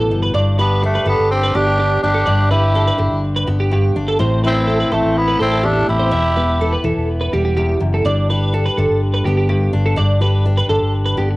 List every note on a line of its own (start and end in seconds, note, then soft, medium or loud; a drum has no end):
0.00 0.34 E2 medium
0.00 0.32 B2 medium
0.00 0.33 E3 medium
0.00 0.34 B3 soft
0.00 0.22 A4 medium
0.10 0.32 G1 medium
0.10 1.54 G3 medium
0.22 0.34 B4 medium
0.34 0.97 G1 medium
0.34 1.79 G2 medium
0.34 0.83 D4 soft
0.34 0.58 D5 medium
0.59 0.82 B3 medium
0.59 0.83 D4 medium
0.59 2.25 G4 medium
0.59 0.82 B4 medium
0.83 1.07 A3 medium
0.83 2.02 D4 medium
0.83 1.07 D4 medium
0.83 muted clean electric guitar stroke medium
0.95 1.07 B4 medium
1.06 1.17 G1 medium
1.06 2.97 D3 medium
1.06 1.31 B3 medium
1.06 1.31 D4 medium
1.06 1.30 A4 medium
1.19 1.50 G1 medium
1.31 1.57 C4 medium
1.31 1.57 G4 medium
1.43 1.55 B4 medium
1.55 1.97 G1 medium
1.55 2.24 B3 medium
1.55 2.03 D4 loud
1.55 1.66 G4 medium
1.55 2.02 G4 medium
1.67 1.78 G4 medium
1.79 2.02 G4 medium
2.03 2.25 G1 medium
2.03 2.48 D4 medium
2.03 2.25 D4 medium
2.03 2.48 G4 medium
2.14 2.26 A4 medium
2.26 2.90 G1 medium
2.26 3.70 G2 medium
2.26 2.50 D4 medium
2.26 2.50 D5 medium
2.51 2.74 D4 medium
2.51 3.20 E4 medium
2.51 3.20 G4 medium
2.51 2.74 B4 medium
2.75 3.95 D4 medium
2.75 2.87 A4 medium
2.87 2.99 B4 medium
2.98 3.10 G1 medium
2.98 4.19 D3 medium
2.98 muted clean electric guitar stroke medium
3.12 3.43 G1 medium
3.36 3.47 B4 medium
3.47 3.90 G1 medium
3.47 4.17 B3 medium
3.47 muted clean electric guitar stroke medium
3.60 3.71 G4 medium
3.71 4.17 G2 medium
3.71 3.95 G4 medium
3.96 4.17 G1 medium
3.96 4.17 D4 medium
4.08 4.19 A4 medium
4.19 4.83 A1 medium
4.19 5.64 A2 medium
4.19 4.68 C4 medium
4.19 4.43 C5 medium
4.44 4.94 C4 medium
4.44 8.05 E4 medium
4.44 4.96 E4 medium
4.44 4.67 B4 medium
4.67 5.88 C4 medium
4.67 4.79 A4 medium
4.80 4.91 B4 medium
4.92 5.03 A1 medium
4.92 6.09 E3 medium
4.92 5.19 A3 medium
4.92 5.20 C4 medium
4.92 5.15 A4 medium
5.05 5.36 A1 medium
5.18 5.41 B3 medium
5.18 5.40 E4 medium
5.28 5.39 B4 medium
5.39 5.82 A1 medium
5.39 6.10 A3 medium
5.39 5.66 C4 loud
5.39 5.65 E4 medium
5.39 5.50 A4 medium
5.52 5.63 A4 medium
5.63 6.10 E2 medium
5.63 5.89 D4 medium
5.63 5.87 G4 medium
5.63 5.87 A4 medium
5.88 6.10 A1 medium
5.88 6.10 C4 medium
5.88 6.81 E4 loud
5.88 6.80 G4 medium
5.99 6.11 C5 medium
6.11 6.75 E1 loud
6.11 7.56 E2 medium
6.11 6.36 B3 medium
6.11 6.35 E5 medium
6.36 6.61 B3 medium
6.36 6.59 B4 medium
6.61 8.05 B3 medium
6.61 6.72 A4 medium
6.73 6.84 B4 medium
6.84 6.95 E1 loud
6.84 8.02 E3 medium
6.84 7.08 A4 medium
6.97 7.28 E1 medium
7.21 7.32 B4 medium
7.33 7.75 E1 medium
7.33 9.25 G3 medium
7.33 7.44 G4 medium
7.45 7.55 G4 medium
7.57 7.80 E2 medium
7.57 7.80 G4 medium
7.80 8.02 F#1 medium
7.80 8.04 F#2 medium
7.94 8.05 A4 medium
8.05 8.68 G1 medium
8.05 9.48 G2 medium
8.05 8.53 D4 medium
8.05 8.28 D5 medium
8.30 9.95 G4 medium
8.30 8.52 B4 medium
8.54 9.72 D4 medium
8.54 8.65 A4 medium
8.66 8.77 B4 medium
8.78 8.88 G1 loud
8.78 10.68 D3 medium
8.78 9.00 A4 medium
8.90 9.21 G1 medium
9.14 9.25 B4 medium
9.25 9.67 G1 medium
9.25 9.95 B3 medium
9.25 9.36 G4 medium
9.37 9.48 G4 medium
9.49 9.94 G2 medium
9.49 9.72 G4 medium
9.73 9.95 G1 medium
9.73 9.94 D4 medium
9.86 9.97 A4 medium
9.96 10.61 G1 medium
9.96 11.37 G2 medium
9.96 10.44 D4 medium
9.96 10.20 D5 medium
10.21 11.37 G4 medium
10.21 10.44 B4 medium
10.46 11.37 D4 medium
10.57 10.69 B4 medium
10.69 10.80 G1 medium
10.69 11.37 D3 medium
10.69 10.92 A4 medium
10.82 11.13 G1 medium
11.06 11.17 B4 medium
11.17 11.37 G1 medium
11.17 11.37 B3 medium
11.17 11.29 G4 medium
11.31 muted clean electric guitar stroke medium